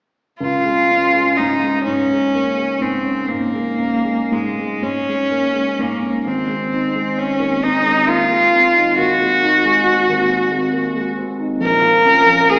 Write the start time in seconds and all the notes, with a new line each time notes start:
0.40 C#2 F4
0.65 G#3
0.91 C#4
1.16 G#3
1.37 G#2 D#4
1.63 G#3
1.84 G#2 C#4
2.12 G#3
2.35 A#3
2.58 G#3
2.80 G#2 C4
3.05 C#4
3.29 G#2 A#3
3.54 G#3
3.78 C#4
4.04 G#3
4.32 G#2 G#3
4.59 G#3
4.83 G#2 C#4
5.09 G#3
5.31 A#3
5.54 G#3
5.78 G#2 A#3
6.03 C#4
6.26 G#1 C4
6.49 G#3
6.72 D#4
6.95 G#3
7.17 C4 C#4
7.39 D#2
7.62 C4 D#4
7.85 G#3
8.07 A#3 F4
8.31 G#3
8.53 C4
8.76 D#4
8.97 D#2 F#4
9.21 G#3
9.43 D#4
9.65 G#3
9.86 C4
10.09 D#2
10.30 C4
10.52 G#3
10.73 A#3
10.95 G#3
11.17 C4
11.39 D#4
11.61 A#1 A#4
11.81 F3
12.04 C#4
12.26 F3
12.49 A#3 G#4